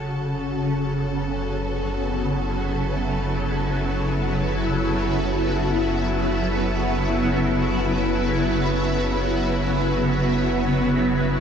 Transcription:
Already playing: F#1 C#3 F#3 C#4 F#4 A4 A5
0.51 B3
1.50 E4

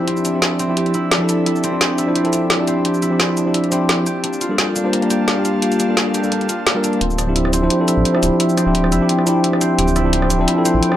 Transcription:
Already playing: F3 C4 D4 E4 G4 E5
0.08 C4 D5, closed hi-hat
0.17 cabasa
0.25 D4, closed hi-hat, cabasa
0.33 F3 C4 D4 E4 G4
0.42 E4, snare, closed hi-hat
0.59 C4, closed hi-hat, cabasa
0.68 F3 C4 D4 E4 G4
0.77 G4, closed hi-hat
0.86 closed hi-hat
0.94 E4, closed hi-hat, cabasa
1.11 D4, snare, closed hi-hat
1.18 F3 C4 D4 E4
1.23 A4
1.29 A4, closed hi-hat, cabasa
1.46 E4, closed hi-hat
1.56 cabasa
1.64 C4, closed hi-hat, cabasa
1.72 F3 C4 D4 E4 G4
1.81 G4, snare, closed hi-hat
1.98 E4, closed hi-hat, cabasa
2.06 F3 C4 D4 E4 C5
2.16 C4, closed hi-hat
2.24 F3 C4 D4 E4 A4, closed hi-hat
2.33 D4, closed hi-hat, cabasa
2.50 E4, snare, closed hi-hat
2.57 F3 C4 D4 E4
2.62 G4
2.67 C4, closed hi-hat, cabasa
2.85 G4, closed hi-hat
2.94 cabasa
3.02 E4, closed hi-hat, cabasa
3.10 F3 C4 D4 E4 G4
3.20 C4, snare, closed hi-hat
3.37 D4, closed hi-hat, cabasa
3.45 F3 C4 D4 E4 G4
3.54 E4, closed hi-hat
3.64 closed hi-hat
3.70 F3 C4 D4 E4 G4, closed hi-hat, cabasa
3.89 G4, snare, closed hi-hat
4.06 A#3 G4 F5 A5, closed hi-hat, cabasa
4.24 D4, closed hi-hat
4.33 cabasa
4.41 F4, closed hi-hat, cabasa
4.49 G3 A#3 D4 F4 A4
4.58 G4, snare, closed hi-hat
4.76 D4, closed hi-hat, cabasa
4.84 G3 A#3 D4 F4 C5
4.93 A#4, closed hi-hat
5.01 G3 A#3 D4 F4 A#4, closed hi-hat
5.10 G4, closed hi-hat, cabasa
5.28 D4, snare, closed hi-hat
5.34 G3 A#3 D4 F4
5.39 G4
5.45 F4, closed hi-hat, cabasa
5.62 G4, closed hi-hat
5.72 closed hi-hat, cabasa
5.80 D4, closed hi-hat, cabasa
5.88 G3 A#3 D4 F4 A4
5.97 A#4, snare, closed hi-hat
6.14 G4, closed hi-hat, cabasa
6.22 G3 A#3 D4 F4 A4, cabasa
6.32 D4, closed hi-hat
6.41 closed hi-hat
6.49 F4, closed hi-hat, cabasa
6.67 A4, snare, closed hi-hat
6.74 G3 A#3 D4 F4 A#4
6.84 D4, closed hi-hat, cabasa
6.93 closed hi-hat
7.01 D1 F3 C4 C5 E5 G5, closed hi-hat
7.10 cabasa
7.18 D4, cross-stick, closed hi-hat, cabasa
7.27 F3 C4 D4 E4 G4
7.36 E4, closed hi-hat
7.45 cross-stick
7.53 C4, closed hi-hat, cabasa
7.62 F3 C4 D4 E4 C5
7.70 G4, closed hi-hat
7.79 F3 C4 D4 E4 A4
7.88 E4, closed hi-hat, cabasa
7.97 A1
8.05 C4, closed hi-hat
8.12 F3 C4 D4 E4, cross-stick
8.17 G4
8.23 D1 D4, closed hi-hat, cabasa
8.40 E4, closed hi-hat
8.49 cabasa
8.57 C4, cross-stick, closed hi-hat, cabasa
8.65 D1 F3 C4 D4 E4 G4
8.75 G4, closed hi-hat
8.84 cross-stick
8.92 F1 E4, closed hi-hat, cabasa
9.00 F3 C4 D4 E4 G4
9.09 C4, closed hi-hat
9.19 cross-stick
9.24 F3 C4 D4 E4, closed hi-hat, cabasa
9.29 G4
9.44 E4, closed hi-hat
9.53 cross-stick
9.61 C4, closed hi-hat, cabasa
9.79 D1 G4, closed hi-hat
9.88 cabasa
9.96 E4, cross-stick, closed hi-hat, cabasa
10.04 F3 C4 D4 E4 G4
10.13 C4, closed hi-hat
10.22 cross-stick
10.30 D4, closed hi-hat, cabasa
10.39 F3 C4 D4 E4 C5
10.48 E4, closed hi-hat
10.56 F3 C4 D4 E4 A4
10.65 C4, closed hi-hat, cabasa
10.74 A1
10.83 G4, closed hi-hat
10.89 F3 C4 D4 E4, cross-stick

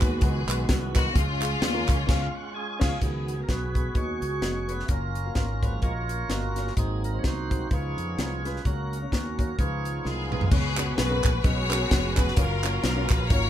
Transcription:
Already playing: D#3 F#3 G#3 B3 F#4 G#4 B4
0.01 D#2, kick, clap, closed hi-hat
0.21 C#2 G#3 B3 D#4 F#4 G#4 B4, kick, closed hi-hat
0.47 B1 G#3 B3 D#4 F#4 B4, clap, closed hi-hat
0.69 C2, kick, snare, closed hi-hat
0.94 G#3 B3 D#4 F#4 A#4, kick, snare, clap, closed hi-hat
1.14 C#2 C#3 G#3 C#4 F4 G#4, kick, closed hi-hat
1.40 C#4 F4 G#4, clap, closed hi-hat
1.61 D#2, snare, closed hi-hat
1.73 C#4 F4 A#4
1.88 C#2 C#5, kick, clap, closed hi-hat
2.07 C#2 C#4 F4 F5, kick, snare, crash
2.35 F#5
2.54 C#4 F4 G#4 G#5
2.79 C#2 C#4 F4 G#4 G#5, kick, snare, crash
3.00 C#2 C#3 D#3 F#3 G#3 B3 C#4 F#4 G#4 C#5, kick, closed hi-hat
3.28 closed hi-hat
3.38 B3 F#4 G#4 A#4
3.43 A#4
3.49 B1 F#4 G#4 B4, kick, snare, closed hi-hat
3.74 B3 F#4 G#4 B4, kick, closed hi-hat
3.94 D#2 B3 F#4 G#4 C#5 D#5, kick, closed hi-hat
4.21 C#2, closed hi-hat
4.41 F1 B3 F#4 G#4 D#5, snare, closed hi-hat
4.68 B3 F#4 G#4 B4 C#5, closed hi-hat
4.80 snare
4.86 F#1 A#3 F4 F#4 C#5 F5, kick, closed hi-hat
4.91 C#4 F4 A#4
5.15 closed hi-hat
5.25 A#3 F4 F#4 A#4
5.35 G#1 A#4, kick, snare, closed hi-hat
5.62 F3 G#3 A#3 F4 F#4 B4 C#5, kick, closed hi-hat
5.82 A#1 A#3 F4 F#4 A#4 C#5 D#5, kick, closed hi-hat
6.09 closed hi-hat
6.28 G1 A#3 C#4 F4 F#4 D#5, snare, closed hi-hat
6.56 A#3 F4 F#4 C#5, snare, closed hi-hat
6.67 snare
6.76 G#1 G#2 F#3 G#3 A#3 C4 D#4 F#4 G#4 C5, kick, closed hi-hat
7.04 A#4, closed hi-hat
7.12 G#3 D#4 F#4 C5
7.19 C#5
7.24 C2 D#4 F#4 C5, kick, snare, closed hi-hat
7.49 G#3 D#4 F#4 C5, kick, closed hi-hat
7.70 C#2 C#3 F3 G#3 B3 C#4 D#4 F4 G#4 B4 C#5, kick, closed hi-hat
7.97 F2, closed hi-hat
8.17 C2 G#3 C#4 F4 C#5, snare, closed hi-hat
8.44 G#3 C#4 F4 B4, snare, closed hi-hat
8.56 snare
8.64 C#2 C#3 F#3 A#3 C#4 F#4 A#4 C#5, kick, closed hi-hat
8.93 closed hi-hat
9.01 A#3 C#4 F#4 C#5
9.12 D#2 C#4 F#4 A#4, kick, snare, closed hi-hat
9.38 A#3 C#4 F#4 C#5, kick, closed hi-hat
9.57 C#2 C#3 F3 G#3 B3 C#4 D#4 F4 G#4 B4 C#5, kick, closed hi-hat
9.85 closed hi-hat
10.04 C2 G#3 B3 C#4 F4 G#4 A#4, snare
10.31 G#3 C#4 F4 B4, mid tom
10.41 floor tom
10.51 C#2 C#3 G#3 B3 C#4 F#4 G#4 B4 C#5, kick, crash
10.77 B3 C#4 F#4 G#4 C#5, clap, closed hi-hat
10.98 B1 F#4 G#4 B4, snare, closed hi-hat
11.09 B3 C#4 F#4 G#4 A#4
11.24 A#1, kick, clap, closed hi-hat
11.44 B1 B3 C#4 F#4 G#4 C#5 D#5, kick, closed hi-hat
11.69 B3 C#4 F#4 G#4 A#4, clap, closed hi-hat
11.91 F1, kick, snare, closed hi-hat
12.16 B3 C#4 F#4 G#4 B4, kick, clap, closed hi-hat
12.28 snare
12.36 F#1 F#3 A#3 C#4 F4 F#4 G#4 A#4 C#5 F5, kick, closed hi-hat
12.44 A#4
12.63 A#3 C#4 F4 F#4 C#5, clap, closed hi-hat
12.83 B1 A#4, snare, closed hi-hat
12.96 A#3 C#4 F4 F#4 C#5
13.10 A#1 B4, kick, clap, closed hi-hat
13.28 G#1 A#3 C#4 F4 F#4 A#4 C#5, kick, closed hi-hat

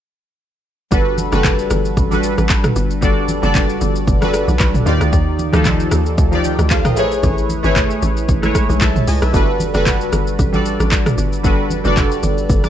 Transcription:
0.91 G1 G3 D4 F#4 A4 B4, kick, shaker
1.18 high conga, shaker
1.32 F#1 G3 D4 F#4 A4 B4, cross-stick, high conga, shaker
1.44 kick, clap, low conga, shaker
1.59 shaker
1.70 G1, cross-stick, high conga, shaker
1.85 shaker
1.97 A1, kick, low conga, shaker
2.11 G3 D4 F#4 A4 B4, high conga, shaker
2.23 shaker
2.38 A1, cross-stick, high conga, shaker
2.49 kick, clap, shaker
2.64 cross-stick, mid tom, shaker
2.76 G1, shaker
2.90 shaker
3.01 G1 G3 D4 F#4 A4 D5, kick, shaker
3.28 high conga, shaker
3.42 F#1 G3 D4 F#4 A4 D5, high conga, shaker
3.55 kick, clap, low conga, shaker
3.69 shaker
3.81 G1, high conga, shaker
3.96 shaker
4.07 G1, kick, low conga, shaker
4.21 G3 D4 F#4 A4 B4, cross-stick, high conga, shaker
4.34 cross-stick, shaker
4.48 B1, high conga, shaker
4.60 B1, kick, clap, shaker
4.74 mid tom, shaker
4.85 D#2 D#3 D#4 F4 G4 D5, shaker
5.01 D2, cross-stick, shaker
5.13 D#2, kick, shaker
5.39 high conga, shaker
5.52 D2 F3 D#4 F4 G4 A4, cross-stick, high conga, shaker
5.65 kick, clap, low conga, shaker
5.80 shaker
5.91 D#2, cross-stick, high conga, shaker
6.06 shaker
6.18 D2, kick, low conga, shaker
6.32 F3 D#4 F4 G4 D5, high conga, shaker
6.44 D5 G5, shaker
6.59 D2, cross-stick, high conga, shaker
6.70 C5 F5, kick, clap, shaker
6.85 A#4 D#5, cross-stick, mid tom, shaker
6.96 A1 A3 E4 G#4 B4 C#5, shaker
7.12 shaker
7.23 A1, kick, low conga, shaker
7.38 shaker
7.49 high conga, shaker
7.63 G#1 A3 E4 G#4 B4 C#5, high conga, shaker
7.76 kick, clap, low conga, shaker
7.91 shaker
8.02 A1, high conga, shaker
8.17 shaker
8.29 A1, kick, low conga, shaker
8.42 G#3 A3 E4 B4 C#5, cross-stick, high conga, shaker
8.55 kick, cross-stick, shaker
8.69 B1, high conga, shaker
8.81 B1 B4 E5 A5, kick, clap, shaker
8.96 mid tom, shaker
9.07 C#2 D#5 G#5, open hi-hat, shaker
9.22 B1 B4 E5, cross-stick, shaker
9.33 G1 G3 D4 F#4 A4 B4, kick, shaker
9.60 high conga, shaker
9.74 F#1 G3 D4 F#4 A4 B4, cross-stick, high conga, shaker
9.86 kick, clap, low conga, shaker
10.01 shaker
10.13 G1, cross-stick, high conga, shaker
10.27 shaker
10.39 A1, kick, low conga, shaker
10.52 G3 D4 F#4 A4 D5, high conga, shaker
10.65 shaker
10.79 A1, cross-stick, high conga, shaker
10.91 kick, clap, shaker
11.06 cross-stick, mid tom, shaker
11.18 G1, shaker
11.33 shaker
11.43 G1 G3 D4 F#4 A4 B4, kick, shaker
11.70 high conga, shaker
11.84 F#1 G3 D4 F#4 A4 D5, high conga, shaker
11.97 kick, clap, low conga, shaker
12.12 shaker
12.23 G1, high conga, shaker
12.38 shaker
12.50 G1, kick, low conga, shaker
12.64 A5 D6, cross-stick, high conga, shaker

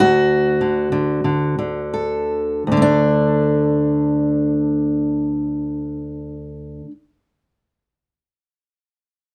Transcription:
0.00 D2 F#4
0.61 D3
0.92 D3
1.24 D3
1.59 D3
1.94 A4
2.67 D2
2.72 D3
2.77 A3
2.82 D4

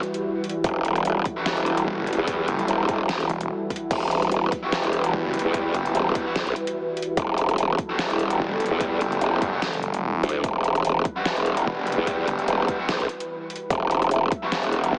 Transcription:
Already playing: E3 G3 E4 F#4 B4
0.03 closed hi-hat
0.14 closed hi-hat
0.44 closed hi-hat
0.49 closed hi-hat
0.64 E1 A4, kick, closed hi-hat
0.85 closed hi-hat
0.96 closed hi-hat
1.05 E1, closed hi-hat
1.25 kick, closed hi-hat
1.36 G3 B3 E4 F#4
1.46 E1, snare, closed hi-hat
1.57 closed hi-hat
1.66 closed hi-hat
1.77 closed hi-hat
1.87 E1
1.98 F#1
2.07 closed hi-hat
2.13 closed hi-hat
2.18 E2
2.27 kick, closed hi-hat
2.48 F#1, closed hi-hat
2.59 closed hi-hat
2.68 E1, closed hi-hat
2.89 E1, kick, closed hi-hat
3.09 snare, closed hi-hat
3.20 closed hi-hat
3.29 E1, closed hi-hat
3.41 closed hi-hat
3.70 kick, closed hi-hat
3.76 closed hi-hat
3.91 E1 B4, kick, closed hi-hat, crash
4.11 closed hi-hat
4.22 closed hi-hat
4.32 E1, closed hi-hat
4.52 kick, closed hi-hat
4.63 G3 B3 E4 F#4
4.72 E1, snare, closed hi-hat
4.84 closed hi-hat
4.93 closed hi-hat
5.04 closed hi-hat
5.13 E1
5.24 F#1
5.34 closed hi-hat
5.39 closed hi-hat
5.45 E2
5.54 kick, closed hi-hat
5.74 F#1, closed hi-hat
5.86 closed hi-hat
5.95 E1, closed hi-hat
6.15 kick, closed hi-hat
6.26 G3 B3 E4 F#4
6.36 B1, snare, closed hi-hat
6.47 closed hi-hat
6.56 closed hi-hat
6.67 closed hi-hat
6.97 closed hi-hat
7.02 closed hi-hat
7.17 E1 A4, kick, closed hi-hat
7.38 closed hi-hat
7.49 closed hi-hat
7.58 E1, closed hi-hat
7.78 kick, closed hi-hat
7.89 G3 B3 E4 F#4
7.99 E1, snare, closed hi-hat
8.10 closed hi-hat
8.19 closed hi-hat
8.30 closed hi-hat
8.40 E1
8.51 F#1
8.60 closed hi-hat
8.66 closed hi-hat
8.71 E2
8.81 kick, closed hi-hat
9.01 F#1, closed hi-hat
9.12 closed hi-hat
9.21 E1, closed hi-hat
9.42 F#1, kick, closed hi-hat
9.52 G3 B3 E4 F#4
9.62 snare, closed hi-hat
9.73 closed hi-hat
9.83 closed hi-hat
9.94 closed hi-hat
10.03 E1
10.23 D2, closed hi-hat
10.29 closed hi-hat
10.44 E1 B4, kick, closed hi-hat
10.64 closed hi-hat
10.75 closed hi-hat
10.85 E1, closed hi-hat
11.05 kick, closed hi-hat
11.16 G3 B3 E4 F#4
11.26 E1, snare, closed hi-hat
11.37 closed hi-hat
11.46 closed hi-hat
11.57 closed hi-hat
11.66 E1
11.78 F#1
11.87 closed hi-hat
11.92 closed hi-hat
11.98 E2
12.07 kick, closed hi-hat
12.28 F#1, closed hi-hat
12.39 closed hi-hat
12.48 E1, closed hi-hat
12.68 kick, closed hi-hat
12.79 G3 B3 E4 F#4
12.89 B1, snare, closed hi-hat
13.00 closed hi-hat
13.09 closed hi-hat
13.20 closed hi-hat
13.50 closed hi-hat
13.56 closed hi-hat
13.70 E1 E5, kick, closed hi-hat
13.91 closed hi-hat
14.02 closed hi-hat
14.11 E1, closed hi-hat
14.32 kick, closed hi-hat
14.42 G3 B3 E4 F#4
14.52 E1, snare, closed hi-hat
14.63 closed hi-hat
14.72 closed hi-hat
14.84 closed hi-hat
14.93 E1

